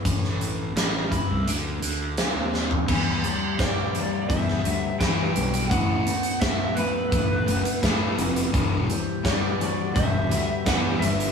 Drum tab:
CC |----------------|x---------------|----------------|----------------|
HH |x-x-x-x-x-x-x---|--x-x-x-x-x-x-xx|x-xxx-x-x-xxx-xx|x-x-x-x-x-x-x-xx|
SD |-o--o-------o-o-|----o----o--o---|----o-------o---|----o-------o---|
FT |---------------o|----------------|----------------|----------------|
BD |o-----o---------|o---o---o---o---|o---o---o---o---|o---o---o---o---|